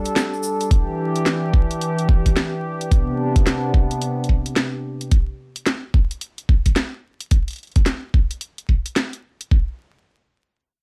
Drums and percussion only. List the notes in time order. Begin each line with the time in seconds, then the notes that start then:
0.05 closed hi-hat, shaker
0.16 snare, closed hi-hat, shaker
0.34 shaker
0.43 shaker
0.60 closed hi-hat, shaker
0.71 kick, closed hi-hat
1.16 closed hi-hat
1.26 snare, closed hi-hat
1.54 kick
1.71 closed hi-hat
1.81 closed hi-hat
1.99 closed hi-hat
2.09 kick
2.26 kick, closed hi-hat
2.37 snare, closed hi-hat
2.81 closed hi-hat
2.92 kick, closed hi-hat
3.36 kick, closed hi-hat
3.47 snare, closed hi-hat
3.74 kick
3.91 closed hi-hat
4.02 closed hi-hat
4.24 closed hi-hat
4.29 kick
4.46 closed hi-hat
4.56 snare, closed hi-hat
5.01 closed hi-hat
5.12 kick, closed hi-hat
5.56 closed hi-hat
5.66 snare, closed hi-hat
5.94 kick
6.11 closed hi-hat
6.21 closed hi-hat
6.38 closed hi-hat
6.49 kick
6.66 kick, closed hi-hat
6.76 snare, closed hi-hat
7.21 closed hi-hat
7.31 kick, closed hi-hat
7.48 closed hi-hat
7.51 closed hi-hat
7.53 closed hi-hat
7.56 closed hi-hat
7.58 closed hi-hat
7.63 closed hi-hat
7.67 closed hi-hat
7.72 closed hi-hat
7.76 kick, closed hi-hat
7.86 snare, closed hi-hat
8.14 kick
8.31 closed hi-hat
8.41 closed hi-hat
8.58 closed hi-hat
8.69 kick
8.86 closed hi-hat
8.96 snare, closed hi-hat
9.13 closed hi-hat
9.41 closed hi-hat
9.51 kick